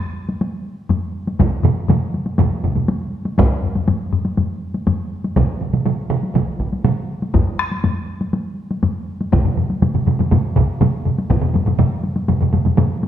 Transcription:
0.29 taiko high soft
0.41 taiko high medium
0.89 taiko low-mid medium
0.89 taiko high medium
1.27 taiko high soft
1.39 taiko medium
1.39 taiko low-mid medium
1.39 taiko mid medium
1.39 taiko high medium
1.63 taiko low-mid medium
1.63 taiko mid medium
1.88 taiko low-mid medium
1.88 taiko mid medium
1.88 taiko high medium
2.14 taiko high soft
2.26 taiko high soft
2.38 taiko medium
2.38 taiko low-mid medium
2.38 taiko mid medium
2.38 taiko high medium
2.64 taiko medium
2.64 taiko low-mid medium
2.64 taiko mid medium
2.75 taiko low-mid medium
2.75 taiko mid soft
2.75 taiko high soft
2.88 taiko high medium
3.25 taiko high soft
3.38 taiko loud
3.38 taiko low-mid medium
3.38 taiko high medium
3.63 taiko low-mid medium
3.75 taiko low-mid medium
3.75 taiko high soft
3.88 taiko low-mid medium
3.88 taiko high medium
4.13 taiko low-mid medium
4.25 taiko high soft
4.37 taiko low-mid medium
4.37 taiko high medium
4.74 taiko high soft
4.87 taiko low-mid medium
4.87 taiko high medium
5.24 taiko high soft
5.36 taiko medium
5.36 taiko mid medium
5.36 taiko high medium
5.61 taiko mid medium
5.73 taiko mid medium
5.73 taiko high soft
5.85 taiko mid medium
5.85 taiko high medium
6.10 taiko mid medium
6.23 taiko high soft
6.35 taiko medium
6.35 taiko mid medium
6.35 taiko high medium
6.60 taiko medium
6.73 taiko high soft
6.84 taiko mid medium
6.84 taiko high medium
7.22 taiko high soft
7.34 taiko medium
7.34 taiko low-mid medium
7.34 taiko high medium
7.59 taiko rim medium
7.72 taiko high soft
7.84 taiko low-mid medium
7.84 taiko high medium
8.21 taiko high soft
8.33 taiko high medium
8.71 taiko high soft
8.83 taiko low-mid medium
8.83 taiko high medium
9.21 taiko high soft
9.32 taiko medium
9.32 taiko low-mid medium
9.32 taiko mid medium
9.32 taiko high medium
9.44 taiko low-mid medium
9.44 taiko mid medium
9.57 taiko low-mid medium
9.57 taiko mid medium
9.70 taiko high soft
9.82 taiko low-mid medium
9.82 taiko mid medium
9.82 taiko high medium
9.94 taiko low-mid medium
9.94 taiko mid medium
10.06 taiko low-mid medium
10.06 taiko mid medium
10.06 taiko high soft
10.19 taiko low-mid medium
10.19 taiko mid medium
10.19 taiko high medium
10.31 taiko medium
10.31 taiko low-mid medium
10.31 taiko mid medium
10.31 taiko high medium
10.56 taiko medium
10.56 taiko low-mid medium
10.56 taiko mid medium
10.81 taiko low-mid medium
10.81 taiko mid medium
10.81 taiko high medium
11.05 taiko low-mid medium
11.05 taiko mid medium
11.18 taiko high soft
11.30 taiko medium
11.30 taiko low-mid medium
11.30 taiko mid medium
11.30 taiko high medium
11.41 taiko low-mid medium
11.41 taiko mid medium
11.54 taiko low-mid medium
11.54 taiko mid medium
11.54 taiko high medium
11.66 taiko low-mid medium
11.66 taiko mid medium
11.66 taiko high medium
11.79 taiko low-mid medium
11.79 taiko mid medium
11.79 taiko high medium
12.04 taiko high soft
12.16 taiko high medium
12.28 taiko low-mid medium
12.28 taiko mid medium
12.28 taiko high medium
12.41 taiko low-mid medium
12.41 taiko mid medium
12.53 taiko low-mid medium
12.53 taiko mid medium
12.53 taiko high medium
12.65 taiko low-mid medium
12.65 taiko mid medium
12.65 taiko high medium
12.77 taiko low-mid medium
12.77 taiko mid medium
12.77 taiko high medium
13.03 taiko high medium

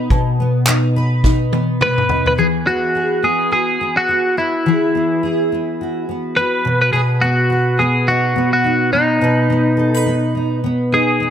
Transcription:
0.00 0.40 B3 medium
0.00 0.66 D#4 medium
0.00 0.96 B4 medium
0.10 2.38 B2 medium
0.10 kick medium
0.40 1.52 B3 medium
0.67 1.23 D#4 medium
0.67 clap loud
0.96 1.81 B4 medium
1.24 2.08 D#4 medium
1.24 kick medium
1.24 snare soft
1.53 2.67 B3 medium
1.53 high tom medium
1.81 2.38 B4 medium
1.81 2.26 B4 medium
1.81 mid tom medium
1.98 mid tom medium
2.09 2.45 D#4 soft
2.09 floor tom medium
2.26 2.32 B4 medium
2.26 floor tom medium
2.38 4.65 E3 medium
2.38 2.94 G#4 medium
2.38 2.46 G#4 medium
2.67 3.23 B3 soft
2.67 3.25 F#4 medium
2.95 4.65 G#4 medium
3.23 3.80 B3 soft
3.23 3.50 G#4 medium
3.51 4.08 F#4 soft
3.51 3.94 G#4 medium
3.81 4.37 B3 soft
3.97 4.38 F#4 medium
4.09 5.80 F#4 soft
4.37 4.95 B3 soft
4.37 6.04 E4 medium
4.66 6.72 E3 medium
4.66 5.22 G#4 medium
4.95 5.52 B3 soft
5.23 6.72 G#4 medium
5.52 6.08 B3 soft
5.81 6.36 F#4 soft
6.09 7.21 B3 soft
6.37 8.07 F#4 soft
6.37 6.80 B4 medium
6.65 6.92 B2 medium
6.82 6.92 B4 medium
6.93 9.20 B2 medium
6.93 7.00 G#4 medium
6.93 7.50 B4 medium
7.22 7.79 B3 soft
7.22 7.80 F#4 medium
7.50 9.22 B4 medium
7.79 8.35 B3 soft
7.79 8.08 G#4 medium
8.08 8.63 D#4 soft
8.08 8.52 F#4 medium
8.36 8.92 B3 soft
8.53 8.92 F#4 medium
8.64 10.34 D#4 soft
8.93 9.49 B3 soft
8.93 10.59 D#4 medium
9.21 11.30 B2 medium
9.21 9.77 B4 medium
9.50 10.06 B3 soft
9.77 9.94 A4 medium
9.94 11.30 B4 soft
10.06 10.63 B3 soft
10.35 10.91 D#4 soft
10.64 11.20 B3 soft
10.92 11.30 D#4 soft
10.92 11.30 G#4 medium
11.20 11.30 B3 soft

